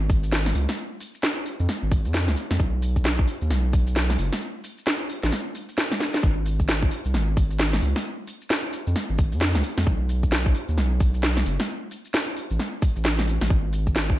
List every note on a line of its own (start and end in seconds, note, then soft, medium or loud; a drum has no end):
0.00 0.53 G#1 loud
0.10 kick loud
0.10 open hi-hat loud
0.10 shaker medium
0.23 closed hi-hat medium
0.23 shaker soft
0.32 snare loud
0.32 closed hi-hat medium
0.32 shaker soft
0.46 snare medium
0.55 0.67 C#2 medium
0.55 open hi-hat loud
0.55 shaker medium
0.69 snare medium
0.69 closed hi-hat soft
0.69 shaker soft
0.78 closed hi-hat medium
0.78 shaker soft
1.01 open hi-hat loud
1.01 shaker medium
1.14 shaker soft
1.23 snare loud
1.23 closed hi-hat medium
1.23 shaker soft
1.46 open hi-hat loud
1.46 shaker medium
1.60 1.67 F2 loud
1.60 closed hi-hat soft
1.60 shaker soft
1.69 snare medium
1.69 closed hi-hat medium
1.69 shaker soft
1.83 2.07 G#1 medium
1.91 kick loud
1.91 open hi-hat loud
1.91 shaker medium
2.05 2.29 F2 medium
2.05 closed hi-hat medium
2.05 shaker soft
2.14 snare loud
2.14 closed hi-hat medium
2.14 shaker soft
2.28 2.36 C#2 loud
2.28 snare medium
2.37 open hi-hat loud
2.37 shaker medium
2.51 2.58 F2 medium
2.51 snare medium
2.51 open hi-hat medium
2.51 shaker soft
2.60 3.26 B1 loud
2.60 kick loud
2.60 closed hi-hat medium
2.60 shaker soft
2.82 open hi-hat loud
2.82 shaker medium
2.96 kick medium
2.96 shaker soft
3.05 snare loud
3.05 closed hi-hat medium
3.05 shaker soft
3.19 kick loud
3.28 open hi-hat loud
3.28 shaker medium
3.42 3.52 D#2 medium
3.42 closed hi-hat soft
3.42 shaker soft
3.50 4.17 B1 loud
3.50 snare medium
3.50 closed hi-hat medium
3.50 shaker soft
3.73 kick loud
3.73 open hi-hat loud
3.73 shaker medium
3.87 closed hi-hat medium
3.87 shaker soft
3.96 snare loud
3.96 closed hi-hat medium
3.96 shaker soft
4.10 snare medium
4.19 4.31 F#1 medium
4.19 open hi-hat loud
4.19 shaker medium
4.33 snare medium
4.33 closed hi-hat soft
4.33 shaker soft
4.41 closed hi-hat medium
4.41 shaker soft
4.64 open hi-hat loud
4.64 shaker medium
4.78 shaker soft
4.87 snare loud
4.87 closed hi-hat medium
4.87 shaker soft
5.10 open hi-hat loud
5.10 shaker medium
5.23 5.31 A1 medium
5.23 snare medium
5.23 closed hi-hat soft
5.23 shaker soft
5.32 snare medium
5.32 closed hi-hat medium
5.32 shaker soft
5.55 open hi-hat loud
5.55 shaker medium
5.69 closed hi-hat medium
5.69 shaker soft
5.78 snare loud
5.78 closed hi-hat medium
5.78 shaker soft
5.92 snare medium
6.00 snare medium
6.00 open hi-hat loud
6.00 shaker medium
6.14 snare medium
6.14 open hi-hat medium
6.14 shaker soft
6.23 6.89 G#1 loud
6.23 kick loud
6.23 closed hi-hat medium
6.23 shaker soft
6.46 open hi-hat loud
6.46 shaker medium
6.60 kick medium
6.60 shaker soft
6.69 snare loud
6.69 closed hi-hat medium
6.69 shaker soft
6.82 kick loud
6.91 open hi-hat loud
6.91 shaker medium
7.05 7.16 C2 medium
7.05 closed hi-hat soft
7.05 shaker soft
7.14 7.80 G#1 loud
7.14 snare medium
7.14 closed hi-hat medium
7.14 shaker soft
7.37 kick loud
7.37 open hi-hat loud
7.37 shaker medium
7.51 closed hi-hat medium
7.51 shaker soft
7.59 snare loud
7.59 closed hi-hat medium
7.59 shaker soft
7.73 snare medium
7.82 7.94 C#2 medium
7.82 open hi-hat loud
7.82 shaker medium
7.96 snare medium
7.96 closed hi-hat soft
7.96 shaker soft
8.05 closed hi-hat medium
8.05 shaker soft
8.28 open hi-hat loud
8.28 shaker medium
8.41 shaker soft
8.50 snare loud
8.50 closed hi-hat medium
8.50 shaker soft
8.73 open hi-hat loud
8.73 shaker medium
8.87 8.95 F2 medium
8.87 closed hi-hat soft
8.87 shaker soft
8.96 snare medium
8.96 closed hi-hat medium
8.96 shaker soft
9.10 9.34 G#1 medium
9.18 kick loud
9.18 open hi-hat loud
9.18 shaker medium
9.32 9.56 F2 medium
9.32 closed hi-hat medium
9.32 shaker soft
9.41 snare loud
9.41 closed hi-hat medium
9.41 shaker soft
9.55 9.63 C#2 loud
9.55 snare medium
9.64 open hi-hat loud
9.64 shaker medium
9.78 9.85 F2 medium
9.78 snare medium
9.78 open hi-hat medium
9.78 shaker soft
9.86 10.53 B1 loud
9.86 kick loud
9.86 closed hi-hat medium
9.86 shaker soft
10.09 open hi-hat loud
10.09 shaker medium
10.23 kick medium
10.23 shaker soft
10.32 snare loud
10.32 closed hi-hat medium
10.32 shaker soft
10.46 kick loud
10.55 open hi-hat loud
10.55 shaker medium
10.69 10.79 D#2 medium
10.69 closed hi-hat soft
10.69 shaker soft
10.78 11.44 B1 loud
10.78 snare medium
10.78 closed hi-hat medium
10.78 shaker soft
11.00 kick loud
11.00 open hi-hat loud
11.00 shaker medium
11.14 closed hi-hat medium
11.14 shaker soft
11.23 snare loud
11.23 closed hi-hat medium
11.23 shaker soft
11.37 snare medium
11.46 11.58 F#1 medium
11.46 open hi-hat loud
11.46 shaker medium
11.60 snare medium
11.60 closed hi-hat soft
11.60 shaker soft
11.69 closed hi-hat medium
11.69 shaker soft
11.91 open hi-hat loud
11.91 shaker medium
12.05 shaker soft
12.14 snare loud
12.14 closed hi-hat medium
12.14 shaker soft
12.37 open hi-hat loud
12.37 shaker medium
12.51 12.58 A1 medium
12.51 closed hi-hat soft
12.51 shaker soft
12.59 snare medium
12.59 closed hi-hat medium
12.59 shaker soft
12.82 kick loud
12.82 open hi-hat loud
12.82 shaker medium
12.96 13.39 A1 medium
12.96 closed hi-hat medium
12.96 shaker soft
13.05 snare loud
13.05 closed hi-hat medium
13.05 shaker soft
13.19 snare medium
13.28 open hi-hat loud
13.28 shaker medium
13.41 13.49 A1 medium
13.41 snare medium
13.41 open hi-hat medium
13.41 shaker soft
13.50 14.17 G#1 loud
13.50 kick loud
13.50 closed hi-hat medium
13.50 shaker soft
13.73 open hi-hat loud
13.73 shaker medium
13.87 kick medium
13.87 shaker soft
13.96 snare loud
13.96 closed hi-hat medium
13.96 shaker soft
14.10 kick loud